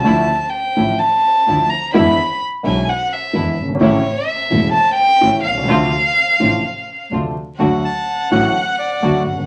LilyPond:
<<
  \new Staff \with { instrumentName = "Violin" } { \time 4/4 \key d \minor \tempo 4 = 127 a''4 g''4 a''4. bes''8 | b''4 r8 gis''8 fis''8 e''4 r8 | cis''4 e''4 a''8 g''4 f''8~ | f''2. r4 |
\key d \major fis''1 | }
  \new Staff \with { instrumentName = "Bandoneon" } { \time 4/4 \key d \minor r1 | r1 | r1 | r1 |
\key d \major r8 a''4 fis''4 d''4 r8 | }
  \new Staff \with { instrumentName = "String section" } { \time 4/4 \key d \minor <f d' e'>8 r4 <f d' e'>8 r4 <f d' e'>8 r8 | <gis d' e'>8 r4 <gis d' e'>8 r4 <gis d' e'>8 r8 | <a cis' e'>8 r4 <a cis' e'>8 r4 <a cis' e'>8 r8 | <c' d' f'>8 r4 <c' d' f'>8 r4 <c' d' f'>8 r8 |
\key d \major <a d' fis'>8 r4 <a d' fis'>8 r4 <a d' fis'>8 r8 | }
  \new Staff \with { instrumentName = "Grand piano" } { \clef bass \time 4/4 \key d \minor <d, d f a e'>8 r4 <a,, a, d f a e'>8 r4 <d, d f a e'>8 r8 | <e, d e gis b e'>8 r4 <b,, b, d gis b e'>8 r4 <e, d e gis b e'>8 r32 fis,,32 g,,32 gis,,32 | <a,, a, cis e a e'>8 r4 <e,, e, cis e a e'>8 r4 <a,, a, cis e a e'>8 r32 b,,32 c,32 cis,32 | <d, c d f a d'>8 r4 <a,, a, c f a d'>8 r4 <d, c d f a d'>8 r8 |
\key d \major <d, d fis a fis'>8 r4 <a,, a, d fis a fis'>8 r4 <d, d fis a fis'>8 r32 fis,,32 g,,32 r32 | }
  \new Staff \with { instrumentName = "Double bass" } { \clef bass \time 4/4 \key d \minor d,8 r4 a,,8 r4 d,8 r8 | e,8 r4 b,,8 r4 e,8 g,,8 | a,,8 r4 e,,8 r4 a,,8 c,8 | d,8 r4 a,,8 r4 d,8 r8 |
\key d \major d,8 r4 a,,8 r4 d,8 g,,8 | }
>>